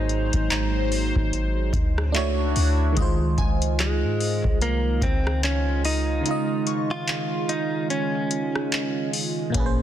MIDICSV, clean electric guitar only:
0, 0, Header, 1, 2, 480
1, 0, Start_track
1, 0, Tempo, 821918
1, 1734, Time_signature, 4, 2, 24, 8
1, 5735, End_track
2, 0, Start_track
2, 0, Title_t, "Clean electric guitar"
2, 0, Program_c, 0, 27
2, 0, Note_on_c, 0, 63, 111
2, 1234, Note_off_c, 0, 63, 0
2, 2221, Note_on_c, 0, 56, 80
2, 2674, Note_off_c, 0, 56, 0
2, 2700, Note_on_c, 0, 58, 90
2, 2938, Note_on_c, 0, 60, 91
2, 2944, Note_off_c, 0, 58, 0
2, 3160, Note_off_c, 0, 60, 0
2, 3177, Note_on_c, 0, 61, 96
2, 3416, Note_off_c, 0, 61, 0
2, 3418, Note_on_c, 0, 63, 97
2, 4036, Note_on_c, 0, 65, 118
2, 4054, Note_off_c, 0, 63, 0
2, 4375, Note_on_c, 0, 63, 101
2, 4386, Note_off_c, 0, 65, 0
2, 4613, Note_off_c, 0, 63, 0
2, 4616, Note_on_c, 0, 61, 89
2, 5312, Note_off_c, 0, 61, 0
2, 5735, End_track
0, 0, End_of_file